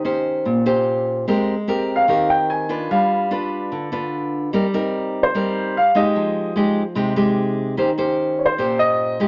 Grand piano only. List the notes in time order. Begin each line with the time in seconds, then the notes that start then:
Already playing: D#5
1.96 F5
2.30 G5
2.50 G#5
2.91 F5
5.23 C5
5.77 F5
5.96 D#5
8.39 C#5
8.46 C5
8.79 D#5